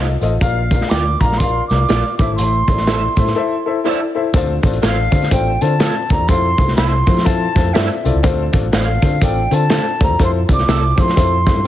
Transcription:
Already playing: C2 F4 A4 C5 D#5
0.21 A1 F4 A4 C5 D#5, closed hi-hat, tambourine
0.41 A#1 A#2 F4 A#4 D5 F5, kick, closed hi-hat, tambourine
0.71 F4 A#4 D5 F5, kick, closed hi-hat, tambourine
0.81 snare
0.89 D2 F4 A#4 D5 F5 G5 D6, snare, closed hi-hat, tambourine
1.20 A#1 F4 A#4 D5 F5 A#5, kick, closed hi-hat, tambourine
1.32 snare
1.38 F4 C6, kick, closed hi-hat, tambourine
1.42 A#4 D5 F5
1.68 C2 F4 A#4 D6, snare, closed hi-hat, tambourine
1.72 D5 F5
1.89 A#1 F4 A#4 D5 F5, snare, closed hi-hat, tambourine
2.18 A1 A2 E4 A4 C5 E5 D6, kick, closed hi-hat, tambourine
2.29 G#1
2.36 A1 C6, closed hi-hat, tambourine
2.68 A1 E4 A4 C5 D5, kick, closed hi-hat, tambourine
2.78 snare, closed hi-hat
2.87 E4 A4 C5 D5 E5, snare, closed hi-hat, tambourine
3.16 A2 E4 A4 C5 E5, kick, closed hi-hat, tambourine
3.26 snare, closed hi-hat
3.35 E4 A4 C5 E5
3.66 E4 A4 C5 E5
3.84 E4 A4 C5 D5 E5
4.15 E4 A4 C5 E5
4.34 D2 D3 C4 D4 F4 A4 C5, kick, closed hi-hat, tambourine
4.63 A1 C4 D4 F4 A4 C5, kick, closed hi-hat, tambourine
4.73 closed hi-hat
4.81 A1 C4 D4 F4 A4 C5 F5, snare, closed hi-hat, tambourine
4.86 F5
5.11 D3 C4 D4 F4 A4 C5, kick, closed hi-hat, tambourine
5.22 snare, closed hi-hat
5.31 A1 C4 D4 F4 A4 C5 G5, kick, closed hi-hat, tambourine
5.61 D3 C4 D4 F4 A4 C5 A5, closed hi-hat, tambourine
5.80 C4 D4 F4 A4 C5 F5, snare, closed hi-hat, tambourine
6.09 D2 C4 D4 F4 A4 D5 A#5, kick, closed hi-hat, tambourine
6.20 E2
6.28 F2 C4 E4 F4 A4 C5 C6, kick, closed hi-hat, tambourine
6.57 C2 C4 E4 F4 A4 C5, kick, closed hi-hat, tambourine
6.68 snare, closed hi-hat
6.76 C2 C4 E4 F4 A4 C5 E5 C6, snare, closed hi-hat, tambourine
7.06 F3 C4 E4 F4 A4 C5, kick, closed hi-hat, tambourine
7.17 snare, closed hi-hat
7.24 C4 E4 F4 A4 C5 A5, kick, closed hi-hat, tambourine
7.54 F2 C4 E4 F4 A4 C5, kick, snare, closed hi-hat, tambourine
7.73 G2 C4 E4 F4 A4 C5 D5 E5, snare, closed hi-hat, tambourine
8.04 C2 C4 E4 F4 A4 D5, closed hi-hat, tambourine
8.15 C#2
8.23 D2 D3 C4 D4 F4 A4 C5, kick, closed hi-hat, tambourine
8.52 A1 C4 D4 F4 A4 D5, kick, closed hi-hat, tambourine
8.72 A1 C4 D4 F4 A4 C5 F5, snare, closed hi-hat, tambourine
9.02 D3 C4 D4 F4 A4 C5, kick, closed hi-hat, tambourine
9.21 A1 C4 D4 F4 A4 D5 G5, kick, closed hi-hat, tambourine
9.50 D3 C4 D4 F4 A4 C5 A5, closed hi-hat, tambourine
9.70 C4 D4 F4 A4 C5 F5, snare, closed hi-hat, tambourine
10.00 D2 C4 D4 F4 A4 C5 A#5, kick, closed hi-hat, tambourine
10.09 E2
10.19 F2 C4 E4 F4 A4 C5, kick, closed hi-hat, tambourine
10.24 C6
10.48 C2 C4 E4 F4 A4 D5, kick, closed hi-hat, tambourine
10.54 D6
10.59 snare, closed hi-hat
10.67 C2 C4 E4 F4 A4 D5 E5, snare, closed hi-hat, tambourine
10.95 F3 C4 E4 F4 A4 C5, kick, closed hi-hat, tambourine
11.01 C6
11.08 snare, closed hi-hat
11.16 F2 C4 E4 F4 A4 C5, kick, closed hi-hat, tambourine
11.45 C4 E4 F4 A4 C5, kick, snare, closed hi-hat, tambourine
11.56 G2

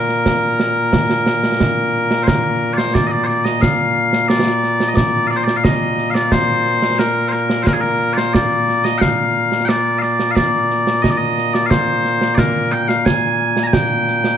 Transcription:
Already playing: A#2 A#3 A#4
0.09 snare
0.26 concert bass drum, snare
0.60 snare
0.93 concert bass drum, snare
1.10 snare
1.26 snare
1.44 snare
1.60 concert bass drum, snare
2.11 snare
2.23 C5
2.27 A#4, concert bass drum, snare
2.73 D5
2.78 C5, snare
2.95 D5, concert bass drum, snare
3.07 D#5
3.11 D5
3.24 C5 D5
3.29 snare
3.45 D#5, snare
3.61 F5, concert bass drum, snare
4.13 snare
4.28 D5, snare
4.63 snare
4.80 snare
4.88 D#5
4.95 D5, concert bass drum, snare
5.27 D5 F5
5.31 snare
5.37 C5
5.44 D5, snare
5.56 F5
5.64 D#5, concert bass drum, snare
5.98 snare
6.10 D5 F5
6.15 snare
6.32 C5, concert bass drum, snare
6.66 snare
6.82 snare
6.99 A#4, snare
7.28 A#4 C5
7.33 snare
7.50 snare
7.63 A#4 C5
7.67 concert bass drum, snare
7.73 G#4
7.81 A#4
8.13 D5
8.17 C5, snare
8.34 D5, concert bass drum, snare
8.68 snare
8.84 D#5, snare
8.98 F5 G5, concert bass drum, snare
9.52 snare
9.65 D5 G5, snare
9.99 D5 F5
10.03 snare
10.20 snare
10.31 F5
10.35 D5, concert bass drum, snare
10.71 snare
10.87 snare
11.02 D#5, concert bass drum, snare
11.10 D5
11.17 D#5
11.38 snare
11.53 D5, snare
11.66 F5
11.70 C5, concert bass drum, snare
12.05 snare
12.21 snare
12.35 A#4 D5, concert bass drum, snare
12.72 G5, snare
12.88 F5, snare
13.05 G#5, concert bass drum, snare
13.57 snare
13.63 G#5 A#5
13.73 G5, concert bass drum, snare
14.08 snare
14.24 snare

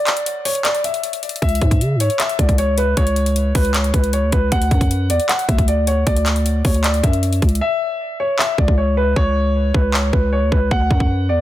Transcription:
Already playing: D5
0.07 clap, closed hi-hat
0.17 closed hi-hat
0.26 closed hi-hat
0.45 C#5, open hi-hat
0.55 closed hi-hat
0.64 D5, clap, closed hi-hat
0.75 closed hi-hat
0.84 E5, closed hi-hat
0.94 closed hi-hat
1.03 closed hi-hat
1.13 closed hi-hat
1.23 closed hi-hat
1.29 closed hi-hat
1.36 closed hi-hat
1.42 C#2 E5, kick, closed hi-hat
1.49 closed hi-hat
1.55 closed hi-hat
1.62 G#2, kick, closed hi-hat
1.71 kick, closed hi-hat
1.81 C#3, closed hi-hat
1.95 G#2
2.00 C#5, closed hi-hat
2.10 closed hi-hat
2.20 E5, clap, closed hi-hat
2.29 closed hi-hat
2.39 C#2 D5, kick, closed hi-hat
2.49 kick, closed hi-hat
2.58 C#5, closed hi-hat
2.78 B4, closed hi-hat
2.97 C#2 C#5, kick, closed hi-hat
3.07 closed hi-hat
3.16 closed hi-hat
3.26 closed hi-hat
3.36 closed hi-hat
3.55 C#2 B4, kick, open hi-hat
3.65 closed hi-hat
3.74 C#5, clap, closed hi-hat
3.84 closed hi-hat
3.94 C#2 B4, kick, closed hi-hat
4.04 closed hi-hat
4.13 C#5, closed hi-hat
4.23 D2
4.32 C#2 B4, kick, closed hi-hat
4.52 D2 F#5, kick, closed hi-hat
4.62 closed hi-hat
4.71 F#2, kick, closed hi-hat
4.81 kick, closed hi-hat
4.91 closed hi-hat
5.10 E2 D5, closed hi-hat
5.20 closed hi-hat
5.29 F#5, clap, closed hi-hat
5.39 closed hi-hat
5.49 D2 E5, kick, closed hi-hat
5.58 kick, closed hi-hat
5.68 D5, closed hi-hat
5.87 C#5, closed hi-hat
6.07 D2 D5, kick, closed hi-hat
6.16 closed hi-hat
6.26 clap, closed hi-hat
6.36 closed hi-hat
6.46 closed hi-hat
6.65 D2 C#5, kick, open hi-hat
6.74 closed hi-hat
6.84 D5, clap, closed hi-hat
6.94 closed hi-hat
7.04 F#2 E5, kick, closed hi-hat
7.13 closed hi-hat
7.23 closed hi-hat
7.33 closed hi-hat
7.42 C#2, kick, closed hi-hat
7.49 closed hi-hat
7.55 closed hi-hat
7.61 E5
8.20 C#5
8.39 E5, clap
8.58 C#2 D5, kick
8.68 C#2, kick
8.78 C#5
8.97 B4
9.16 C#2 C#5, kick
9.74 C#2 B4, kick
9.94 C#5, clap
10.13 C#2 B4, kick
10.33 C#5
10.42 D2
10.52 C#2 B4, kick
10.71 D2 F#5, kick
10.91 F#2, kick
11.00 kick
11.29 E2 D5

